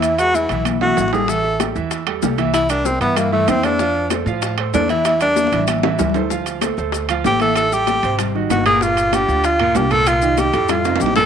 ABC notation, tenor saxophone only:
X:1
M:4/4
L:1/8
Q:1/4=191
K:Aphr
V:1 name="Tenor saxophone"
E _G E2 z G2 ^G | A2 z6 | E D C =B, _B, A, C D- | D2 z4 D E |
E D3 z4 | [K:Dm] z6 G A | A G3 z2 ^F ^G | F2 G2 F2 G A |
F2 G2 F2 G A |]